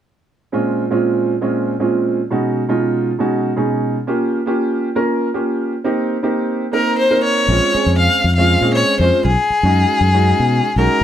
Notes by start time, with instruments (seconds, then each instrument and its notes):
0.52 grand piano A#2 G#3 C4 C#4 F4
0.90 grand piano A#2 G#3 C4 C#4 F4
1.41 grand piano A#2 G#3 C4 C#4 F4
1.80 grand piano A#2 G#3 C4 C#4 F4
2.30 grand piano B2 G#3 C#4 D#4 F#4
2.68 grand piano B2 G#3 C#4 D#4 F4
3.19 grand piano B2 G#3 C#4 D#4 F#4
3.56 grand piano B2 G#3 C#4 D#4 G#4
4.07 grand piano A#3 C#4 F4 G4
4.46 grand piano A#3 C#4 F4 G4
4.95 grand piano A#3 C#4 F4 A#4
5.34 grand piano A#3 C#4 F4 G4
5.84 grand piano A#3 C4 D#4 G4
6.23 grand piano A#3 C4 D#4 G4
6.72 grand piano A#3 C4 D#4 A#4, violin A#4
6.99 violin C5
7.10 grand piano A#3 C4 D#4 A#4
7.24 violin C#5
7.48 fingered electric bass A#1, grand piano G#3 C4 C#4 F4
7.73 grand piano G#3 C4 C#4 G#4, muted fingered electric bass stroke
7.86 fingered electric bass F2
7.99 violin F5
8.24 fingered electric bass F2
8.36 grand piano G#3 C4 C#4 F4, violin F5
8.61 fingered electric bass A#2, grand piano G#3 C4 C#4 G#4
8.75 violin C#5
9.00 fingered electric bass F2, grand piano G#3 C4 C#4 F4, violin C5
9.25 fingered electric bass B1, violin G#4
9.50 muted fingered electric bass stroke
9.63 fingered electric bass F#2, grand piano G#3 C#4 D#4 F#4
10.01 fingered electric bass F#2
10.14 grand piano G#3 C#4 D#4 F#4
10.40 fingered electric bass B2
10.76 fingered electric bass B1, grand piano G#3 C#4 D#4 F#4, violin A#4